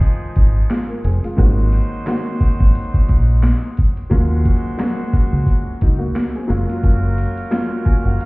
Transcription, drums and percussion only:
0.01 kick medium
0.01 closed hi-hat medium
0.01 shaker medium
0.36 kick loud
0.36 closed hi-hat medium
0.36 shaker medium
0.55 shaker soft
0.70 snare loud
0.70 clap medium
0.70 closed hi-hat loud
1.04 closed hi-hat medium
1.04 shaker medium
1.23 closed hi-hat medium
1.23 shaker medium
1.38 kick loud
1.38 closed hi-hat medium
1.38 shaker medium
1.72 closed hi-hat medium
1.72 shaker medium
1.91 shaker soft
2.06 snare loud
2.06 clap medium
2.06 closed hi-hat loud
2.06 shaker medium
2.40 kick loud
2.40 closed hi-hat medium
2.40 shaker soft
2.60 kick medium
2.74 closed hi-hat medium
2.74 shaker medium
2.94 kick loud
3.09 kick loud
3.09 closed hi-hat medium
3.09 shaker medium
3.28 shaker medium
3.43 snare loud
3.43 clap medium
3.43 closed hi-hat medium
3.43 shaker medium
3.77 kick medium
3.77 closed hi-hat medium
3.77 shaker medium
3.96 closed hi-hat medium
3.96 shaker medium
4.10 kick loud
4.10 closed hi-hat medium
4.10 shaker medium
4.45 kick loud
4.45 closed hi-hat medium
4.45 shaker medium
4.64 shaker soft
4.79 snare loud
4.79 clap medium
4.79 closed hi-hat loud
4.79 shaker medium
5.13 kick loud
5.13 closed hi-hat medium
5.13 shaker soft
5.47 kick medium
5.47 closed hi-hat medium
5.47 shaker medium
5.81 kick loud
5.81 closed hi-hat medium
5.81 shaker medium
6.00 shaker soft
6.16 snare loud
6.16 clap medium
6.16 closed hi-hat loud
6.16 shaker medium
6.50 closed hi-hat medium
6.50 shaker medium
6.68 closed hi-hat medium
6.68 shaker medium
6.83 kick loud
6.83 closed hi-hat medium
6.83 shaker medium
7.17 closed hi-hat medium
7.17 shaker medium
7.37 closed hi-hat soft
7.37 shaker soft
7.52 snare loud
7.52 clap medium
7.52 closed hi-hat loud
7.86 kick loud
7.86 closed hi-hat medium
7.86 shaker soft
8.20 closed hi-hat medium
8.20 shaker medium

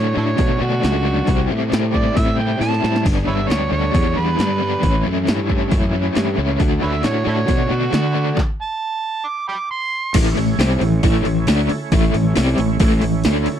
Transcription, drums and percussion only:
0.38 kick loud
0.38 open hi-hat soft
0.83 snare medium
0.83 open hi-hat soft
1.27 kick medium
1.27 open hi-hat soft
1.72 snare loud
1.72 open hi-hat soft
1.94 kick medium
2.17 kick loud
2.17 open hi-hat medium
2.61 snare soft
2.61 open hi-hat soft
2.74 snare soft
2.84 snare medium
2.96 snare medium
3.06 kick medium
3.06 open hi-hat soft
3.06 splash medium
3.50 snare loud
3.50 open hi-hat soft
3.94 kick medium
3.94 open hi-hat soft
4.39 snare loud
4.39 open hi-hat soft
4.83 kick medium
4.83 open hi-hat soft
5.27 snare loud
5.27 open hi-hat soft
5.50 kick medium
5.71 kick loud
5.71 open hi-hat soft
6.15 snare loud
6.15 open hi-hat soft
6.60 kick loud
6.60 open hi-hat soft
6.94 snare soft
7.03 snare medium
7.03 open hi-hat soft
7.48 kick loud
7.48 open hi-hat soft
7.93 snare medium
7.93 open hi-hat soft
8.37 kick medium
8.37 clap medium
10.14 kick medium
10.14 open hi-hat medium
10.14 crash loud
10.37 open hi-hat medium
10.59 snare loud
10.59 open hi-hat medium
10.71 snare soft
10.81 open hi-hat medium
11.03 kick loud
11.03 open hi-hat medium
11.25 open hi-hat medium
11.47 snare loud
11.47 open hi-hat medium
11.69 open hi-hat medium
11.92 kick loud
11.92 open hi-hat medium
12.14 open hi-hat medium
12.36 snare loud
12.36 open hi-hat medium
12.48 snare soft
12.58 open hi-hat medium
12.80 kick loud
12.80 open hi-hat medium
13.02 open hi-hat medium
13.24 snare loud
13.24 open hi-hat medium
13.46 open hi-hat medium

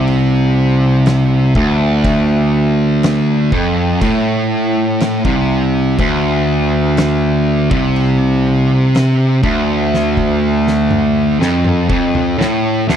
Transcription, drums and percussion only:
0.08 crash medium
1.06 snare loud
1.06 crash medium
1.55 kick loud
2.05 kick loud
2.05 crash medium
3.03 snare loud
3.03 crash medium
3.52 kick loud
4.01 kick loud
4.01 crash medium
5.00 snare loud
5.00 crash medium
5.25 kick loud
5.99 kick loud
5.99 crash medium
6.97 snare loud
6.97 crash medium
7.71 kick loud
7.96 crash medium
8.95 snare loud
8.95 crash medium
9.44 kick loud
9.94 snare medium
10.17 kick medium
10.68 snare medium
10.91 mid tom medium
11.42 snare medium
11.65 mid tom medium
11.90 kick loud
12.15 mid tom medium
12.41 snare loud
12.89 snare loud

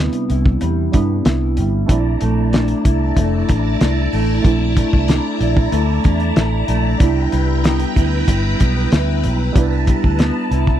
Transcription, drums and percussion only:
0.13 closed hi-hat medium
0.30 closed hi-hat medium
0.46 kick loud
0.61 closed hi-hat medium
0.93 kick medium
0.93 closed hi-hat medium
1.25 snare loud
1.25 closed hi-hat medium
1.57 closed hi-hat medium
1.89 kick loud
1.89 closed hi-hat medium
2.21 closed hi-hat medium
2.53 snare loud
2.53 closed hi-hat medium
2.68 closed hi-hat medium
2.85 kick loud
2.85 closed hi-hat medium
3.17 kick medium
3.17 closed hi-hat medium
3.49 kick medium
3.49 closed hi-hat medium
3.81 snare loud
3.81 closed hi-hat medium
4.13 open hi-hat medium
4.45 kick loud
4.45 closed hi-hat medium
4.77 kick loud
4.77 closed hi-hat medium
4.93 kick medium
5.08 snare loud
5.08 closed hi-hat medium
5.41 closed hi-hat medium
5.57 kick loud
5.72 closed hi-hat medium
6.04 kick medium
6.04 closed hi-hat medium
6.20 closed hi-hat soft
6.36 snare loud
6.36 closed hi-hat medium
6.68 closed hi-hat medium
7.00 kick loud
7.00 closed hi-hat medium
7.32 closed hi-hat medium
7.64 snare loud
7.64 closed hi-hat medium
7.79 closed hi-hat medium
7.96 kick medium
7.96 closed hi-hat medium
8.28 kick medium
8.28 closed hi-hat medium
8.60 kick medium
8.60 closed hi-hat medium
8.92 snare loud
8.92 closed hi-hat medium
9.24 closed hi-hat medium
9.56 kick loud
9.56 closed hi-hat medium
9.87 kick medium
9.87 closed hi-hat medium
10.04 kick medium
10.19 snare loud
10.19 closed hi-hat medium
10.52 closed hi-hat medium
10.67 kick medium

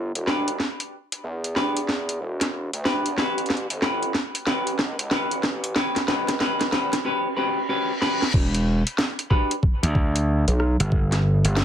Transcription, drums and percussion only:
0.15 closed hi-hat soft
0.27 snare medium
0.48 closed hi-hat medium
0.60 snare medium
0.80 closed hi-hat soft
1.12 closed hi-hat medium
1.44 closed hi-hat soft
1.56 snare medium
1.77 closed hi-hat medium
1.89 snare medium
2.09 closed hi-hat soft
2.41 snare medium
2.41 closed hi-hat medium
2.73 closed hi-hat soft
2.85 snare medium
3.06 closed hi-hat medium
3.18 snare medium
3.38 closed hi-hat soft
3.46 closed hi-hat soft
3.50 snare medium
3.57 closed hi-hat soft
3.70 closed hi-hat medium
3.82 snare medium
4.03 closed hi-hat soft
4.14 snare medium
4.35 closed hi-hat medium
4.47 snare medium
4.67 closed hi-hat medium
4.79 snare medium
4.99 closed hi-hat medium
5.11 snare medium
5.31 closed hi-hat medium
5.43 snare medium
5.64 closed hi-hat medium
5.76 snare medium
5.96 snare medium
5.96 closed hi-hat soft
6.08 snare loud
6.29 snare medium
6.29 closed hi-hat medium
6.40 snare medium
6.61 snare medium
6.61 closed hi-hat soft
6.72 snare loud
6.93 snare medium
6.93 closed hi-hat medium
8.02 snare medium
8.22 snare medium
8.34 kick loud
8.34 crash loud
8.54 closed hi-hat soft
8.87 closed hi-hat medium
8.98 snare loud
9.19 closed hi-hat soft
9.31 kick medium
9.31 cross-stick soft
9.51 closed hi-hat medium
9.63 kick loud
9.83 closed hi-hat medium
9.95 kick loud
10.16 closed hi-hat medium
10.48 closed hi-hat medium
10.60 cross-stick medium
10.80 closed hi-hat medium
10.92 kick loud
11.12 snare soft
11.12 closed hi-hat soft
11.45 closed hi-hat medium
11.57 snare loud

